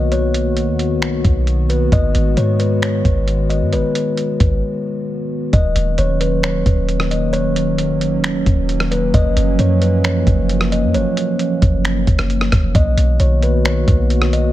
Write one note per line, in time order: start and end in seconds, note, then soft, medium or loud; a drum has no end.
0.00 0.70 B1 loud
0.00 5.49 D#3 medium
0.00 1.88 A#3 medium
0.00 5.49 B3 medium
0.00 5.49 F#4 medium
0.00 0.11 D#5 medium
0.12 0.54 C#5 loud
0.12 closed hi-hat medium
0.34 closed hi-hat medium
0.57 closed hi-hat medium
0.68 0.98 D#2 loud
0.79 closed hi-hat medium
0.96 1.23 B1 loud
1.02 finger snap loud
1.02 closed hi-hat medium
1.25 1.90 B1 loud
1.25 kick medium
1.25 closed hi-hat medium
1.47 closed hi-hat medium
1.69 1.91 B4 medium
1.69 closed hi-hat medium
1.92 2.14 G#1 loud
1.92 5.50 G#3 medium
1.92 2.35 D#5 loud
1.92 kick loud
1.92 closed hi-hat medium
2.15 2.36 G#1 loud
2.15 closed hi-hat medium
2.37 3.02 G#2 loud
2.37 2.59 C#5 medium
2.37 closed hi-hat medium
2.59 2.81 B4 medium
2.59 closed hi-hat medium
2.82 3.46 C#5 medium
2.82 finger snap loud
2.82 closed hi-hat medium
3.05 3.63 G#1 loud
3.05 kick medium
3.05 closed hi-hat medium
3.28 closed hi-hat medium
3.50 3.71 D#5 medium
3.50 closed hi-hat medium
3.61 3.74 G#2 loud
3.73 3.83 G#1 loud
3.73 4.15 B4 loud
3.73 closed hi-hat medium
3.95 closed hi-hat medium
4.17 closed hi-hat medium
4.40 4.62 G#1 loud
4.40 kick loud
4.40 closed hi-hat medium
5.53 5.75 D#1 loud
5.53 9.10 D#3 medium
5.53 12.71 F#3 medium
5.53 14.53 A#3 medium
5.53 12.71 C#4 medium
5.53 5.96 D#5 medium
5.53 kick loud
5.53 closed hi-hat medium
5.76 5.97 D#1 loud
5.76 closed hi-hat medium
5.98 6.63 D#1 loud
5.98 6.20 C#5 medium
5.98 closed hi-hat medium
6.21 6.42 B4 medium
6.21 closed hi-hat medium
6.43 7.07 C#5 medium
6.43 finger snap loud
6.43 closed hi-hat medium
6.66 7.92 D#1 loud
6.66 kick medium
6.66 closed hi-hat medium
6.89 closed hi-hat medium
7.00 cross-stick medium
7.11 7.32 D#5 medium
7.11 closed hi-hat medium
7.33 7.76 C#5 loud
7.33 closed hi-hat medium
7.56 closed hi-hat medium
7.78 closed hi-hat medium
7.90 8.20 F#1 loud
8.01 closed hi-hat medium
8.18 8.45 D#1 loud
8.24 finger snap loud
8.24 closed hi-hat medium
8.46 9.11 D#1 loud
8.46 kick medium
8.46 closed hi-hat medium
8.69 closed hi-hat medium
8.80 cross-stick medium
8.91 9.13 B4 medium
8.91 closed hi-hat medium
9.14 9.36 F#1 loud
9.14 12.71 F3 medium
9.14 9.57 D#5 loud
9.14 kick loud
9.14 closed hi-hat medium
9.37 9.58 F#1 loud
9.37 closed hi-hat medium
9.59 10.24 F#2 loud
9.59 9.81 C#5 medium
9.59 closed hi-hat medium
9.82 10.03 B4 medium
9.82 closed hi-hat medium
10.04 10.68 C#5 medium
10.04 finger snap loud
10.04 closed hi-hat medium
10.27 10.85 F#1 loud
10.27 kick medium
10.27 closed hi-hat medium
10.49 closed hi-hat medium
10.61 cross-stick medium
10.72 10.93 D#5 medium
10.72 closed hi-hat medium
10.83 10.96 F#2 loud
10.94 11.05 F#1 loud
10.94 11.37 C#5 loud
10.94 closed hi-hat medium
11.17 closed hi-hat medium
11.39 closed hi-hat medium
11.62 12.05 F#1 loud
11.62 kick loud
11.62 closed hi-hat medium
11.85 finger snap loud
11.85 closed hi-hat medium
12.07 12.51 F#1 loud
12.07 kick medium
12.07 closed hi-hat medium
12.19 cross-stick loud
12.19 closed hi-hat soft
12.30 closed hi-hat medium
12.41 cross-stick medium
12.52 12.74 F1 loud
12.52 kick loud
12.52 cross-stick loud
12.52 closed hi-hat medium
12.75 12.97 B1 loud
12.75 14.53 D#3 medium
12.75 14.53 B3 medium
12.75 14.53 F#4 medium
12.75 13.18 D#5 loud
12.75 kick loud
12.75 closed hi-hat medium
12.97 13.19 B1 loud
12.97 closed hi-hat medium
13.20 13.85 B1 loud
13.20 13.41 C#5 medium
13.20 closed hi-hat medium
13.43 13.64 B4 medium
13.43 closed hi-hat medium
13.65 14.29 C#5 medium
13.65 finger snap loud
13.65 closed hi-hat medium
13.88 14.53 B1 loud
13.88 kick medium
13.88 closed hi-hat medium
14.10 closed hi-hat medium
14.22 cross-stick medium
14.33 14.53 D#5 medium
14.33 closed hi-hat medium